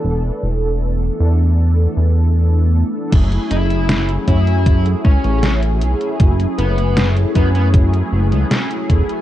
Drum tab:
CC |----------------|x---------------|----------------|
HH |----------------|xxxxxxxxxx-xxxxx|xxxxxxxxxx-xxxxx|
SD |----------------|----o-------o---|----o-------o---|
BD |----------------|o-----o-o-o-----|o-----o-o-----o-|